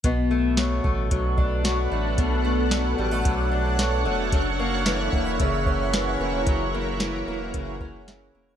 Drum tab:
HH |x-x-x-x-|x-x-x-x-|x-x-x-x-|x-x-x-x-|
SD |--o---o-|--o---o-|--o---o-|--o---o-|
BD |o--ooo--|o---o---|o--ooo--|o---oo--|